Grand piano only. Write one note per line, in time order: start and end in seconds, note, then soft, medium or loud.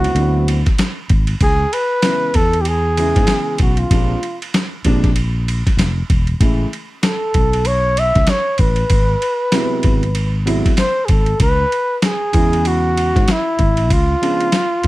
0.16 0.54 D3 medium
0.16 0.55 F#3 soft
0.16 0.55 B3 medium
0.16 0.55 C4 medium
0.16 0.55 E4 medium
2.04 2.27 C#3 medium
2.04 2.27 E3 medium
2.04 2.28 G#3 medium
2.04 2.28 B3 medium
2.04 2.28 E4 medium
2.97 3.86 C#3 medium
2.97 3.86 E3 medium
2.97 3.86 G#3 medium
2.97 3.86 B3 medium
2.97 3.87 E4 medium
3.90 4.14 C3 medium
3.90 4.14 F3 medium
3.90 4.15 G#3 medium
3.90 4.15 A#3 medium
3.90 4.15 D4 medium
4.84 5.08 C3 medium
4.84 5.08 F3 medium
4.84 5.09 G#3 medium
4.84 5.09 A#3 medium
4.84 5.09 D4 loud
6.40 6.64 C#3 medium
6.40 6.65 E3 medium
6.40 6.65 G#3 medium
6.40 6.65 A3 medium
6.40 6.65 E4 medium
9.52 9.99 C3 medium
9.52 9.99 F#3 medium
9.52 9.99 G#3 medium
9.52 10.00 B3 medium
9.52 10.00 E4 medium
10.46 10.70 C3 medium
10.46 10.70 F#3 medium
10.46 10.70 G#3 medium
10.46 10.70 B3 medium
10.46 10.71 E4 loud
12.33 13.22 C#3 medium
12.33 13.22 E3 medium
12.33 13.23 G#3 medium
12.33 13.23 B3 medium
12.33 13.23 E4 medium
14.22 14.45 C#3 medium
14.22 14.46 F3 medium
14.22 14.46 G#3 medium
14.22 14.46 B3 medium
14.22 14.46 D4 medium